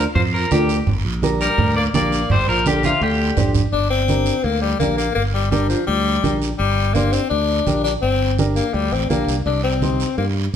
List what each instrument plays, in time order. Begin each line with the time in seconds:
0.15 fingered electric bass F2, tenor saxophone F3, clean electric guitar C5, high conga, low conga, long guiro
0.33 tenor saxophone F3, clean electric guitar A#4
0.51 fingered electric bass D2, tenor saxophone D3, nylon-string guitar D4 F4 A#4, clean electric guitar G4, high conga, short guiro
0.69 short guiro
0.87 fingered electric bass G1, high conga, low conga, long guiro
1.05 fingered electric bass A#1
1.22 nylon-string guitar D4 G4 A#4, high conga, short guiro
1.41 tenor saxophone G3, clean electric guitar A#4, short guiro
1.58 fingered electric bass D2, high conga, low conga, long guiro
1.77 tenor saxophone A#3, clean electric guitar D5
1.94 fingered electric bass A#1, tenor saxophone A#3, nylon-string guitar D4 G4 A#4, clean electric guitar D5, high conga, short guiro
2.12 short guiro
2.30 fingered electric bass G1, tenor saxophone G3, clean electric guitar C5, high conga, low conga, long guiro
2.48 fingered electric bass A#1, tenor saxophone F3, clean electric guitar A#4
2.66 tenor saxophone D3, nylon-string guitar D4 G4 A#4, clean electric guitar G4, high conga, short guiro
2.83 tenor saxophone C3, clean electric guitar F4, high conga, short guiro
3.01 fingered electric bass D2, tenor saxophone D3, clean electric guitar G4, long guiro
3.37 fingered electric bass A#1, nylon-string guitar D4 G4 C5, low conga, short guiro
3.55 low conga, short guiro
3.72 fingered electric bass G1, tenor saxophone D4, high conga, long guiro
3.90 tenor saxophone C4
4.08 nylon-string guitar D4 G4 A#4, high conga, short guiro
4.26 short guiro
4.44 fingered electric bass D2, tenor saxophone A#3, high conga, long guiro
4.62 tenor saxophone G3
4.80 fingered electric bass A#1, tenor saxophone A#3, nylon-string guitar D4 G4 A#4, high conga, short guiro
4.97 tenor saxophone A#3, short guiro
5.15 fingered electric bass G1, tenor saxophone A#3, high conga, long guiro
5.34 tenor saxophone G3
5.51 tenor saxophone G3, nylon-string guitar D4 G4 A#4, high conga, short guiro
5.69 tenor saxophone F3, short guiro
5.87 fingered electric bass D2, tenor saxophone G3, high conga, long guiro
6.23 fingered electric bass A#1, nylon-string guitar D4 G4 A#4, high conga, short guiro
6.42 short guiro
6.58 fingered electric bass G1, tenor saxophone G3, high conga, long guiro
6.94 tenor saxophone A#3, nylon-string guitar D4 G4 C5, high conga, short guiro
7.12 tenor saxophone C4, short guiro
7.30 fingered electric bass D2, tenor saxophone D4, high conga, long guiro
7.66 fingered electric bass A#1, nylon-string guitar D4 G4 A#4, high conga, short guiro
7.84 tenor saxophone D4, short guiro
8.02 fingered electric bass G1, tenor saxophone C4, high conga, long guiro
8.38 nylon-string guitar D4 G4 A#4, high conga, short guiro
8.56 tenor saxophone A#3, short guiro
8.74 fingered electric bass D2, tenor saxophone G3, high conga, long guiro
8.92 fingered electric bass A1, tenor saxophone C4
9.10 fingered electric bass A#1, tenor saxophone A#3, nylon-string guitar D4 G4 A#4, high conga, short guiro
9.28 fingered electric bass C2, short guiro
9.46 fingered electric bass C2, tenor saxophone D4, high conga, long guiro
9.64 tenor saxophone C4
9.82 nylon-string guitar D#4 G4 C5, high conga, short guiro
10.00 short guiro
10.18 fingered electric bass G2, tenor saxophone A#3, long guiro